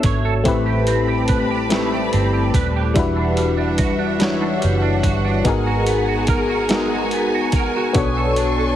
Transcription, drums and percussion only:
0.03 kick medium
0.03 closed hi-hat medium
0.45 kick loud
0.45 closed hi-hat medium
0.87 closed hi-hat medium
1.28 kick medium
1.28 closed hi-hat medium
1.70 snare loud
1.70 closed hi-hat medium
2.13 closed hi-hat medium
2.54 kick medium
2.54 closed hi-hat medium
2.96 kick loud
2.96 closed hi-hat medium
3.37 closed hi-hat medium
3.78 kick medium
3.78 closed hi-hat medium
4.20 snare loud
4.20 closed hi-hat medium
4.62 closed hi-hat soft
5.03 kick medium
5.03 closed hi-hat medium
5.45 kick loud
5.45 closed hi-hat medium
5.87 closed hi-hat medium
6.27 kick loud
6.27 closed hi-hat medium
6.69 snare loud
6.69 closed hi-hat medium
7.11 closed hi-hat medium
7.52 kick medium
7.52 closed hi-hat medium
7.94 kick loud
7.94 closed hi-hat medium
8.36 closed hi-hat medium

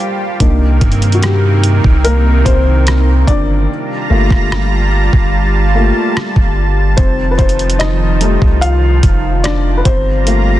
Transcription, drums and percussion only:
0.40 kick loud
0.40 closed hi-hat medium
0.81 kick medium
0.81 closed hi-hat soft
0.92 closed hi-hat soft
1.02 closed hi-hat soft
1.12 closed hi-hat medium
1.23 cross-stick loud
1.23 closed hi-hat medium
1.64 closed hi-hat medium
1.84 kick medium
2.05 closed hi-hat medium
2.46 kick medium
2.46 closed hi-hat medium
2.87 cross-stick loud
2.87 closed hi-hat medium
3.28 kick medium
3.28 closed hi-hat medium
4.31 kick loud
4.31 cross-stick medium
4.52 cross-stick loud
5.13 kick medium
6.17 cross-stick loud
6.36 kick medium
6.98 kick loud
6.98 closed hi-hat medium
7.39 kick medium
7.39 closed hi-hat soft
7.49 closed hi-hat soft
7.59 closed hi-hat soft
7.70 closed hi-hat medium
7.80 cross-stick loud
7.80 closed hi-hat medium
8.21 closed hi-hat medium
8.42 kick medium
8.62 closed hi-hat medium
9.03 kick medium
9.03 closed hi-hat medium
9.44 cross-stick loud
9.44 closed hi-hat medium
9.85 kick loud
9.85 closed hi-hat medium
10.27 closed hi-hat medium

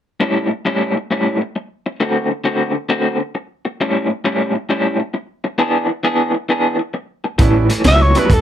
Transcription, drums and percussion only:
7.39 kick loud
7.39 closed hi-hat medium
7.70 closed hi-hat medium
7.84 snare loud
7.84 closed hi-hat medium
8.15 closed hi-hat medium
8.30 kick loud
8.30 closed hi-hat medium

